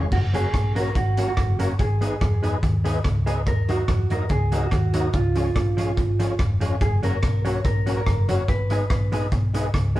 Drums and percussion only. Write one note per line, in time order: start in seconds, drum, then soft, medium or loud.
0.12 kick medium
0.12 crash medium
0.34 closed hi-hat medium
0.54 kick loud
0.54 cross-stick loud
0.54 closed hi-hat medium
0.76 closed hi-hat medium
0.95 kick loud
0.95 closed hi-hat medium
1.17 closed hi-hat loud
1.37 kick loud
1.37 cross-stick loud
1.37 closed hi-hat medium
1.60 closed hi-hat loud
1.79 kick loud
1.79 closed hi-hat medium
2.02 closed hi-hat medium
2.21 kick loud
2.21 cross-stick loud
2.21 closed hi-hat medium
2.43 closed hi-hat medium
2.63 kick loud
2.63 closed hi-hat medium
2.85 closed hi-hat medium
3.04 kick loud
3.04 cross-stick loud
3.04 closed hi-hat medium
3.27 closed hi-hat loud
3.47 kick loud
3.47 closed hi-hat medium
3.69 closed hi-hat medium
3.88 kick loud
3.88 cross-stick loud
3.88 closed hi-hat medium
4.10 closed hi-hat medium
4.29 kick loud
4.29 closed hi-hat medium
4.52 closed hi-hat loud
4.71 kick loud
4.71 cross-stick loud
4.71 closed hi-hat medium
4.94 closed hi-hat loud
5.13 kick loud
5.13 closed hi-hat medium
5.35 closed hi-hat medium
5.56 kick loud
5.56 cross-stick medium
5.56 closed hi-hat medium
5.78 closed hi-hat medium
5.97 kick medium
5.97 closed hi-hat medium
6.20 closed hi-hat loud
6.39 kick loud
6.39 cross-stick loud
6.39 closed hi-hat medium
6.61 closed hi-hat loud
6.81 kick loud
6.81 closed hi-hat medium
7.03 closed hi-hat medium
7.23 kick loud
7.23 cross-stick loud
7.23 closed hi-hat medium
7.45 closed hi-hat medium
7.64 kick loud
7.64 closed hi-hat medium
7.87 closed hi-hat medium
8.07 kick medium
8.07 cross-stick loud
8.07 closed hi-hat medium
8.29 closed hi-hat medium
8.48 kick loud
8.48 closed hi-hat medium
8.70 closed hi-hat medium
8.90 kick loud
8.90 cross-stick loud
8.90 closed hi-hat medium
9.12 closed hi-hat medium
9.32 kick loud
9.32 closed hi-hat medium
9.54 closed hi-hat loud
9.74 kick medium
9.74 cross-stick loud
9.74 closed hi-hat medium
9.96 open hi-hat medium